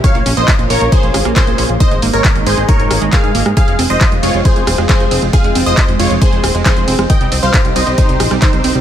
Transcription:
<<
  \new Staff \with { instrumentName = "Supersaw synth" } { \time 4/4 \key f \minor \tempo 4 = 136 <des'' f''>8 r16 <c'' ees''>8 r16 <bes' des''>16 r16 <aes' c''>8. r16 <aes' c''>8. r16 | <c'' ees''>8 r16 <bes' des''>8 r16 <aes' c''>16 r16 <bes' des''>8. r16 <aes' f''>8. r16 | <aes' f''>8 r16 <c'' ees''>8 r16 <f' des''>16 r16 <aes' c''>8. r16 <aes' c''>8. r16 | <aes' f''>8 r16 <c'' ees''>8 r16 <f' des''>16 r16 <aes' c''>8. r16 <aes' c''>8. r16 |
<ees'' g''>8 r16 <c'' f''>8 r16 <c'' ees''>16 r16 <ees' c''>8. r16 <ees' c''>8. r16 | }
  \new Staff \with { instrumentName = "Analog synth pad" } { \time 4/4 \key f \minor <bes des' f'>1 | <aes ees'>1 | <aes c' f'>1~ | <aes c' f'>1 |
<c ees' g'>1 | }
  \new Staff \with { instrumentName = "Synth arpeggio sound" } { \clef bass \time 4/4 \key f \minor f16 bes16 des'16 bes16 f16 bes16 bes16 bes16 f16 bes16 des'16 bes16 f16 bes16 des'16 bes16 | ees16 aes16 bes16 aes16 ees16 aes16 aes16 aes16 ees16 aes16 bes16 aes16 ees16 aes16 bes16 aes16 | f16 aes16 c'16 aes16 f16 aes16 aes16 aes16 f16 aes16 c'16 aes16 f16 aes16 c'16 aes16 | f16 aes16 c'16 aes16 f16 aes16 aes16 aes16 f16 aes16 c'16 aes16 f16 aes16 c'16 aes16 |
ees16 g16 c'16 g16 ees16 g16 g16 g16 ees16 g16 c'16 g16 ees16 g16 c'16 g16 | }
  \new Staff \with { instrumentName = "Analog synth bass" } { \clef bass \time 4/4 \key f \minor r16 bes,,16 bes,,16 bes,,16 r16 bes,,16 bes,,16 bes,,16 r16 bes,,16 aes,,16 bes,,16 r16 bes,,16 bes,,16 bes,,16 | r16 aes,,16 aes,,16 aes,,16 r16 aes,,16 aes,,16 aes,,16 r16 aes,,16 aes,,16 aes,,16 r16 aes,16 aes,,16 aes,16 | r16 f,,16 f,,16 f,,16 r16 f,,16 f,,16 f,,16 r16 f,,16 ees,,16 f,,16 r16 f,,16 f,,16 f,,16 | r16 f,,16 f,,16 f,,16 r16 f,,16 f,,16 f,,16 r16 f,,16 ees,,16 f,,16 r16 f,,16 f,,16 f,,16 |
r16 c,16 c,16 c,16 r16 c,16 c,16 c,16 r16 c,16 bes,,16 c,16 r16 c,16 c,16 c,16 | }
  \new DrumStaff \with { instrumentName = "Drums" } \drummode { \time 4/4 <hh bd>16 hh16 hho16 hh16 <hc hh bd>16 hh16 hho16 hh16 <hh bd>16 hh16 <hho ss>16 <hh ss>16 <hc hh bd>16 hh16 hho16 hh16 | <hh bd>16 hh16 hho16 hh16 <hc hh bd>16 hh16 hho16 hh16 <hh bd>16 hh16 <hho ss>16 hh16 <hc hh bd>16 hh16 hho16 <hh ss>16 | <hh bd cymr>16 hh16 <hho cymr>16 hh16 <hc hh bd cymr>16 hh16 <hho cymr>16 hh16 <hh bd cymr>16 hh16 <hho cymr ss>16 <hh ss>16 <hc hh bd cymr>16 hh16 <hho cymr>16 hh16 | <hh bd cymr>16 hh16 <hho cymr>16 hh16 <hc hh bd cymr>16 hh16 <hho cymr>16 hh16 <hh bd cymr>16 hh16 <hho cymr ss>16 hh16 <hc hh bd cymr>16 hh16 <hho cymr>16 <hh ss>16 |
<hh bd cymr>16 hh16 <hho cymr>16 hh16 <hc hh bd cymr>16 hh16 <hho cymr>16 hh16 <hh bd cymr>16 hh16 <hho cymr ss>16 <hh ss>16 <hc hh bd cymr>16 hh16 <hho cymr>16 hh16 | }
>>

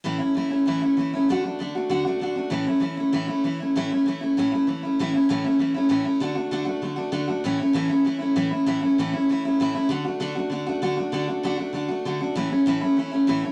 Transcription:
\new Staff \with { instrumentName = "Steel-string acoustic guitar" } { \time 4/4 \key a \major \tempo 4 = 195 <a, e a cis' e'>8 <a cis' e'>8 <e a cis' e'>8 <a cis' e'>8 <a, e a cis' e'>8 <a cis' e'>8 <e a cis' e'>8 <a cis' e'>8 | <d a d' fis'>8 <a d' fis'>8 <d a d' fis'>8 <a d' fis'>8 <d a d' fis'>8 <a d' fis'>8 <d a d' fis'>8 <a d' fis'>8 | <a, e a cis' e'>8 <a cis' e'>8 <e a cis' e'>8 <a cis' e'>8 <a, e a cis' e'>8 <a cis' e'>8 <e a cis' e'>8 <a cis' e'>8 | <a, e a cis' e'>8 <a cis' e'>8 <e a cis' e'>8 <a cis' e'>8 <a, e a cis' e'>8 <a cis' e'>8 <e a cis' e'>8 <a cis' e'>8 |
<a, e a cis' e'>8 <a cis' e'>8 <a, e a cis' e'>8 <a cis' e'>8 <e a cis' e'>8 <a cis' e'>8 <a, e a cis' e'>8 <a cis' e'>8 | <d a d' fis'>8 <a d' fis'>8 <d a d' fis'>8 <a d' fis'>8 <d a d' fis'>8 <a d' fis'>8 <d a d' fis'>8 <a d' fis'>8 | <a, e a cis' e'>8 <a cis' e'>8 <a, e a cis' e'>8 <a cis' e'>8 <e a cis' e'>8 <a cis' e'>8 <a, e a cis' e'>8 <a cis' e'>8 | <a, e a cis' e'>8 <a cis' e'>8 <a, e a cis' e'>8 <a cis' e'>8 <e a cis' e'>8 <a cis' e'>8 <a, e a cis' e'>8 <a cis' e'>8 |
<d a d' fis'>8 <a d' fis'>8 <d a d' fis'>8 <a d' fis'>8 <d a d' fis'>8 <a d' fis'>8 <d a d' fis'>8 <a d' fis'>8 | <d a d' fis'>8 <a d' fis'>8 <d a d' fis'>8 <a d' fis'>8 <d a d' fis'>8 <a d' fis'>8 <d a d' fis'>8 <a d' fis'>8 | <a, e a cis' e'>8 <a cis' e'>8 <a, e a cis' e'>8 <a cis' e'>8 <e a cis' e'>8 <a cis' e'>8 <a, e a cis' e'>8 <a cis' e'>8 | }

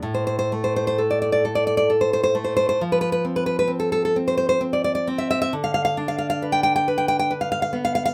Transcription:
\new Staff \with { instrumentName = "Nylon-string guitar" } { \time 3/4 \key f \lydian \tempo 4 = 66 << { r32 c''32 c''32 c''32 r32 c''32 c''32 c''32 r32 d''32 d''32 d''32 r32 d''32 d''32 d''32 r32 c''32 c''32 c''32 r32 c''32 c''32 c''32 | r32 b'32 b'32 b'32 r32 b'32 b'32 b'32 r32 a'32 a'32 a'32 r32 c''32 c''32 c''32 r32 d''32 d''32 d''32 r32 e''32 e''32 e''32 | r32 f''32 f''32 f''32 r32 f''32 f''32 f''32 r32 g''32 g''32 g''32 r32 g''32 g''32 g''32 r32 f''32 f''32 f''32 r32 f''32 f''32 f''32 | } \\ { a,8 a8 a'8 a'8 a'8 a8 | f8 c'8 c'8 c'8 c'8 c'8 | d8 d'8 b'8 b'8 b'8 b8 | } >> }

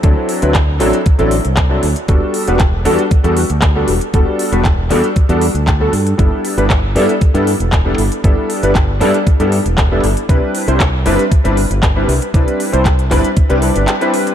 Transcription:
<<
  \new Staff \with { instrumentName = "Electric grand piano" } { \time 4/4 \key e \minor \tempo 4 = 117 <fis c' d' e' a'>8. <fis c' d' e' b'>16 r8 <fis c' d' e' a'>16 r8 <fis c' d' e' a'>16 r8. <fis c' d' e' a'>16 r8 | <g b d' fis' a'>8. <g b d' fis' b'>16 r8 <g b d' fis' a'>16 r8 <g b d' fis' a'>16 r8. <g b d' fis' a'>16 r8 | <g b d' fis' a'>8. <g b d' fis' b'>16 r8 <g b d' fis' a'>16 r8 <g b d' fis' a'>16 r8. <g b d' fis' a'>16 r8 | <g b d' e' a'>8. <g b d' e' b'>16 r8 <g b d' e' a'>16 r8 <g b d' e' a'>16 r8. <g b d' e' a'>16 r8 |
<g b d' e' a'>8. <g b d' e' b'>16 r8 <g b d' e' a'>16 r8 <g b d' e' a'>16 r8. <g b d' e' a'>16 r8 | <g c' d' e' b'>8. <g c' d' e' c''>16 r8 <g c' d' e' b'>16 r8 <g c' d' e' b'>16 r8. <g c' d' e' b'>16 r8 | <g c' d' e' b'>8. <g c' d' e' c''>16 r8 <g c' d' e' b'>16 r8 <g c' d' e' b'>16 <g c' d' e' b'>8. <g c' d' e' b'>8. | }
  \new Staff \with { instrumentName = "Fingered electric bass" } { \clef bass \time 4/4 \key e \minor d,16 r8 d,8. a,,16 r8 a,,8 c,8. d,16 r16 | e,,16 r8 e,,8. e,16 r8 e,8 d,8. e,,16 r16 | e,,16 r8 e,,8. e,16 r8 e,8 d,8. g,8 | g,,16 r8 g,,8. g,16 r8 g,8 e,,8. g,,16 r16 |
g,,16 r8 g,,8. g,16 r8 g,8 e,,8. g,,16 r16 | c,16 r8 c,8. g,,16 r8 g,,8 g,,8. c,16 r16 | c,16 r8 c,8. g,,16 r8 c,8 g,,16 r4 | }
  \new DrumStaff \with { instrumentName = "Drums" } \drummode { \time 4/4 <hh bd>8 hho16 hh16 <hc hh bd>8 <hc hho>16 hh16 <hh bd>16 hh16 hho16 hh16 <hc hh bd>8 hho16 hh16 | <hh bd>8 hho16 hh16 <hc hh bd>8 hho16 hh16 <hh bd>16 hh16 hho16 hh16 <hc hh bd>8 hho16 hh16 | <hh bd>8 hho16 hh16 <hc hh bd>8 <hc hho>16 hh16 <hh bd>16 hh16 hho16 hh16 <hc hh bd>8 hho16 hh16 | <hh bd>8 hho16 hh16 <hc hh bd>8 hho16 hh16 <hh bd>16 hh16 hho16 hh16 <hc hh bd>8 hho16 hh16 |
<hh bd>8 hho16 hh16 <hc hh bd>8 <hc hho>16 hh16 <hh bd>16 hh16 hho16 hh16 <hc hh bd>8 hho16 hh16 | <hh bd>8 hho16 hh16 <hc hh bd>8 hho16 hh16 <hh bd>16 hh16 hho16 hh16 <hc hh bd>8 hho16 hh16 | <hh bd>16 hh16 hho16 hh16 <hc hh bd>16 hh16 <hc hho bd>16 hh16 <hh bd>16 hh16 hho16 hh16 <hc hh>16 hh16 hho16 hh16 | }
>>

